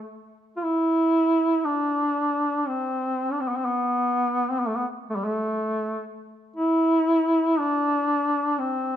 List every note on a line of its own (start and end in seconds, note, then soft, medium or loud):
0.57 0.64 F4 medium
0.63 1.67 E4 loud
1.65 2.69 D4 medium
2.68 3.33 C4 medium
3.32 3.42 D4 medium
3.40 3.50 C4 medium
3.48 3.58 B3 medium
3.56 3.67 C4 medium
3.66 4.53 B3 medium
4.51 4.61 C4 medium
4.60 4.68 B3 medium
4.67 4.77 A3 medium
4.76 4.86 B3 medium
5.10 5.17 A3 medium
5.16 5.26 G3 medium
5.25 6.10 A3 medium
6.56 7.61 E4 loud
7.59 8.60 D4 medium
8.59 8.96 C4 medium